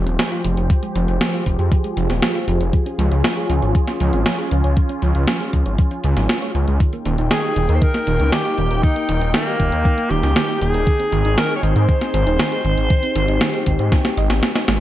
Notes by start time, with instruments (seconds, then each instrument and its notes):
Already playing: analog synth pad F3 F4 G4 G#4 C5
0.06 detuned saw bass D#1, synth arpeggio sound C4, closed hi-hat
0.19 synth arpeggio sound F3, snare, closed hi-hat
0.32 synth arpeggio sound F4, closed hi-hat
0.45 detuned saw bass F1, synth arpeggio sound F3, closed hi-hat
0.57 detuned saw bass F1, synth arpeggio sound G4, closed hi-hat
0.70 synth arpeggio sound F3, kick, closed hi-hat
0.83 synth arpeggio sound G#3, closed hi-hat
0.95 detuned saw bass F1, synth arpeggio sound F3, closed hi-hat
1.08 detuned saw bass F1, synth arpeggio sound C4, closed hi-hat
1.21 synth arpeggio sound F3, snare, closed hi-hat
1.34 synth arpeggio sound F4, closed hi-hat
1.46 detuned saw bass F1, synth arpeggio sound F3, kick, closed hi-hat
1.59 detuned saw bass F2, synth arpeggio sound G4, closed hi-hat
1.72 synth arpeggio sound F3, kick, closed hi-hat
1.84 synth arpeggio sound G#3, closed hi-hat
1.97 detuned saw bass F1, synth arpeggio sound F3, closed hi-hat
2.10 detuned saw bass D#1, synth arpeggio sound C4, snare, closed hi-hat
2.22 synth arpeggio sound F3, snare, closed hi-hat
2.35 synth arpeggio sound F4, closed hi-hat
2.48 detuned saw bass F1, synth arpeggio sound F3, closed hi-hat
2.61 detuned saw bass F1, synth arpeggio sound G4, closed hi-hat
2.73 synth arpeggio sound F3, analog synth pad C#4, kick, closed hi-hat
2.86 synth arpeggio sound C#4, closed hi-hat
2.99 detuned saw bass C#2, synth arpeggio sound F3, closed hi-hat
3.11 detuned saw bass C#2, synth arpeggio sound F4, closed hi-hat
3.24 synth arpeggio sound F3, snare, closed hi-hat
3.37 synth arpeggio sound G#4, closed hi-hat
3.50 detuned saw bass C#2, synth arpeggio sound F3, closed hi-hat
3.62 detuned saw bass G#1, synth arpeggio sound C#5, closed hi-hat
3.75 synth arpeggio sound F3, kick, closed hi-hat
3.88 synth arpeggio sound C#4, snare, closed hi-hat
4.00 detuned saw bass C#2, synth arpeggio sound F3, closed hi-hat
4.13 detuned saw bass G#1, synth arpeggio sound F4, closed hi-hat
4.26 synth arpeggio sound F3, snare, closed hi-hat
4.39 synth arpeggio sound G#4, closed hi-hat
4.51 detuned saw bass C#2, synth arpeggio sound F3, closed hi-hat
4.64 detuned saw bass C#2, synth arpeggio sound C#5, closed hi-hat
4.77 synth arpeggio sound F3, kick, closed hi-hat
4.89 synth arpeggio sound C#4, closed hi-hat
5.02 detuned saw bass C#2, synth arpeggio sound F3, closed hi-hat
5.15 detuned saw bass C#2, synth arpeggio sound F4, closed hi-hat
5.28 synth arpeggio sound F3, snare, closed hi-hat
5.40 synth arpeggio sound G#4, closed hi-hat
5.53 detuned saw bass C#2, synth arpeggio sound F3, kick, closed hi-hat
5.66 detuned saw bass G#1, synth arpeggio sound C#5, closed hi-hat
5.78 synth arpeggio sound F3, kick, closed hi-hat
5.91 synth arpeggio sound C#4, closed hi-hat
6.04 detuned saw bass C#2, synth arpeggio sound G#3, closed hi-hat
6.17 detuned saw bass G#1, synth arpeggio sound F3, snare, closed hi-hat
6.29 synth arpeggio sound F4, snare, closed hi-hat
6.42 synth arpeggio sound C#5, closed hi-hat
6.55 detuned saw bass C#2, synth arpeggio sound C#4, closed hi-hat
6.68 detuned saw bass C#2, synth arpeggio sound G#3, closed hi-hat
6.80 synth arpeggio sound D#3, analog synth pad A#3 D#4 G5, kick, closed hi-hat
6.93 synth arpeggio sound A#3, closed hi-hat
7.05 detuned saw bass D#1, synth arpeggio sound D#3, closed hi-hat
7.18 detuned saw bass D#1, synth arpeggio sound D#4, closed hi-hat
7.31 synth arpeggio sound D#3, alto saxophone G#4, snare, closed hi-hat
7.44 synth arpeggio sound G4, closed hi-hat
7.56 detuned saw bass D#1, synth arpeggio sound D#3, closed hi-hat
7.69 detuned saw bass D#2, synth arpeggio sound A#4, closed hi-hat
7.75 alto saxophone C5
7.82 synth arpeggio sound D#3, alto saxophone A#4, kick, closed hi-hat
7.94 synth arpeggio sound A#3, snare, closed hi-hat
8.07 detuned saw bass D#1, synth arpeggio sound D#3, closed hi-hat
8.20 detuned saw bass C#2, synth arpeggio sound D#4, closed hi-hat
8.32 synth arpeggio sound D#3, alto saxophone G4, snare, closed hi-hat
8.45 synth arpeggio sound G4, closed hi-hat
8.58 detuned saw bass D#1, synth arpeggio sound D#3, closed hi-hat
8.71 detuned saw bass D#1, synth arpeggio sound A#4, closed hi-hat
8.83 synth arpeggio sound D#3, alto saxophone D#4, kick, closed hi-hat
8.96 synth arpeggio sound A#3, closed hi-hat
9.09 detuned saw bass D#1, synth arpeggio sound D#3, closed hi-hat
9.21 detuned saw bass D#1, synth arpeggio sound D#4, closed hi-hat
9.34 synth arpeggio sound D#3, alto saxophone A#3, snare, closed hi-hat
9.47 synth arpeggio sound G4, closed hi-hat
9.60 detuned saw bass D#1, synth arpeggio sound D#3, kick, closed hi-hat
9.72 detuned saw bass D#2, synth arpeggio sound A#4, closed hi-hat
9.85 synth arpeggio sound D#3, kick, closed hi-hat
9.98 synth arpeggio sound A#3, closed hi-hat
10.10 detuned saw bass D#1, synth arpeggio sound D#3, alto saxophone G4, closed hi-hat
10.23 detuned saw bass C#2, synth arpeggio sound D#4, snare, closed hi-hat
10.36 synth arpeggio sound D#3, snare, closed hi-hat
10.49 synth arpeggio sound G4, closed hi-hat
10.61 detuned saw bass D#1, synth arpeggio sound D#3, alto saxophone G#4, closed hi-hat
10.74 detuned saw bass D#1, synth arpeggio sound A#4, closed hi-hat
10.87 synth arpeggio sound D#3, analog synth pad C4 G#4, kick, closed hi-hat
11.00 synth arpeggio sound C4, closed hi-hat
11.12 detuned saw bass G#1, synth arpeggio sound D#3, closed hi-hat
11.25 detuned saw bass G#1, synth arpeggio sound D#4, closed hi-hat
11.38 synth arpeggio sound D#3, alto saxophone A#4, snare, closed hi-hat
11.51 synth arpeggio sound G#4, closed hi-hat
11.56 alto saxophone C#5
11.63 detuned saw bass G#1, synth arpeggio sound D#3, alto saxophone C5, closed hi-hat
11.76 detuned saw bass G#2, synth arpeggio sound C5, closed hi-hat
11.89 synth arpeggio sound D#3, kick, closed hi-hat
12.01 synth arpeggio sound C4, snare, closed hi-hat
12.14 detuned saw bass G#1, synth arpeggio sound D#3, closed hi-hat
12.26 detuned saw bass D#1, synth arpeggio sound D#4, closed hi-hat
12.39 synth arpeggio sound D#3, snare, closed hi-hat
12.52 synth arpeggio sound G#4, closed hi-hat
12.65 detuned saw bass G#1, synth arpeggio sound D#3, closed hi-hat
12.77 detuned saw bass G#1, synth arpeggio sound C5, closed hi-hat
12.90 synth arpeggio sound D#3, analog synth pad G4, kick, closed hi-hat
13.03 synth arpeggio sound C4, closed hi-hat
13.16 detuned saw bass G#1, synth arpeggio sound D#3, closed hi-hat
13.28 detuned saw bass G#1, synth arpeggio sound D#4, closed hi-hat
13.41 synth arpeggio sound D#3, snare, closed hi-hat
13.54 synth arpeggio sound G#4, closed hi-hat
13.66 detuned saw bass G#1, synth arpeggio sound D#3, kick, closed hi-hat
13.79 detuned saw bass G#2, synth arpeggio sound C5, closed hi-hat
13.92 synth arpeggio sound D#3, kick, snare, closed hi-hat
14.05 synth arpeggio sound C4, snare, closed hi-hat
14.17 detuned saw bass G#1, synth arpeggio sound D#5, closed hi-hat
14.30 detuned saw bass G#1, synth arpeggio sound C4, snare, closed hi-hat
14.43 synth arpeggio sound C4, snare, closed hi-hat
14.56 synth arpeggio sound D#4, snare, closed hi-hat
14.68 detuned saw bass G#1, synth arpeggio sound G#3, snare, closed hi-hat